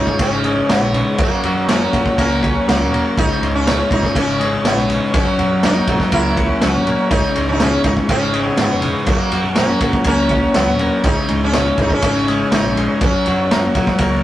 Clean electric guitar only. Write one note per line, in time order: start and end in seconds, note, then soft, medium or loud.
0.00 0.45 C#2 medium
0.00 0.69 G#2 medium
0.00 0.19 C#3 medium
0.20 0.93 C#3 medium
0.45 1.19 G#3 medium
0.70 1.19 G#2 medium
0.94 1.19 C#3 medium
1.20 2.43 F#2 medium
1.45 1.92 F#3 medium
1.69 2.17 A#3 medium
1.93 2.66 F#3 medium
2.18 2.91 A#3 medium
2.43 5.93 C#4 medium
2.67 3.17 F#3 medium
2.92 3.17 A#3 medium
3.17 4.40 C#2 medium
3.41 3.89 G#2 medium
3.66 4.14 C#3 medium
3.90 4.64 G#2 medium
4.15 4.87 C#3 medium
4.40 5.14 G#3 medium
4.65 5.14 G#2 medium
4.88 5.13 C#3 medium
5.13 6.37 F#2 medium
5.39 5.88 F#3 medium
5.63 6.11 A#3 medium
5.89 6.62 F#3 medium
6.13 6.86 A#3 medium
6.38 9.88 C#4 medium
6.63 7.12 F#3 medium
6.88 7.12 A#3 medium
7.12 8.35 C#2 medium
7.37 7.85 G#2 medium
7.61 8.09 C#3 medium
7.86 8.57 G#2 medium
8.10 8.81 C#3 medium
8.34 9.07 G#3 medium
8.58 9.07 G#2 medium
8.83 9.07 C#3 medium
9.09 10.31 F#2 medium
9.32 9.80 F#3 medium
9.57 10.06 A#3 medium
9.82 10.54 F#3 medium
10.07 10.79 A#3 medium
10.30 13.80 C#4 medium
10.55 11.04 F#3 medium
10.80 11.05 A#3 medium
11.04 12.27 C#2 medium
11.29 11.78 G#2 medium
11.54 12.02 C#3 medium
11.79 12.52 G#2 medium
12.03 12.77 C#3 medium
12.28 13.02 G#3 medium
12.53 13.02 G#2 medium
12.78 13.02 C#3 medium
13.02 14.23 F#2 medium
13.27 13.76 F#3 medium
13.52 14.00 A#3 medium
13.77 14.23 F#3 medium
14.01 14.23 A#3 medium